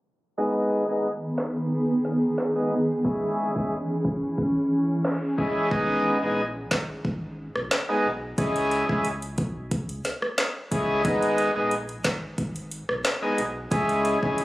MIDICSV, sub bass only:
0, 0, Header, 1, 2, 480
1, 0, Start_track
1, 0, Key_signature, 5, "minor"
1, 0, Tempo, 666667
1, 274, Time_signature, 4, 2, 24, 8
1, 10402, End_track
2, 0, Start_track
2, 0, Title_t, "Sub bass"
2, 0, Program_c, 0, 38
2, 4114, Note_on_c, 0, 32, 107
2, 4431, Note_off_c, 0, 32, 0
2, 4481, Note_on_c, 0, 34, 85
2, 4786, Note_off_c, 0, 34, 0
2, 4834, Note_on_c, 0, 32, 91
2, 5042, Note_off_c, 0, 32, 0
2, 5074, Note_on_c, 0, 32, 106
2, 5391, Note_off_c, 0, 32, 0
2, 5442, Note_on_c, 0, 35, 96
2, 5539, Note_off_c, 0, 35, 0
2, 5794, Note_on_c, 0, 35, 94
2, 6002, Note_off_c, 0, 35, 0
2, 6034, Note_on_c, 0, 37, 115
2, 6351, Note_off_c, 0, 37, 0
2, 6403, Note_on_c, 0, 37, 90
2, 6754, Note_on_c, 0, 35, 94
2, 6765, Note_off_c, 0, 37, 0
2, 6994, Note_on_c, 0, 37, 106
2, 7005, Note_off_c, 0, 35, 0
2, 7202, Note_off_c, 0, 37, 0
2, 7716, Note_on_c, 0, 37, 96
2, 7954, Note_on_c, 0, 32, 109
2, 7965, Note_off_c, 0, 37, 0
2, 8272, Note_off_c, 0, 32, 0
2, 8322, Note_on_c, 0, 34, 82
2, 8626, Note_off_c, 0, 34, 0
2, 8674, Note_on_c, 0, 32, 91
2, 8882, Note_off_c, 0, 32, 0
2, 8915, Note_on_c, 0, 32, 101
2, 9232, Note_off_c, 0, 32, 0
2, 9282, Note_on_c, 0, 35, 94
2, 9379, Note_off_c, 0, 35, 0
2, 9635, Note_on_c, 0, 35, 93
2, 9842, Note_off_c, 0, 35, 0
2, 9875, Note_on_c, 0, 37, 112
2, 10192, Note_off_c, 0, 37, 0
2, 10244, Note_on_c, 0, 37, 92
2, 10402, Note_off_c, 0, 37, 0
2, 10402, End_track
0, 0, End_of_file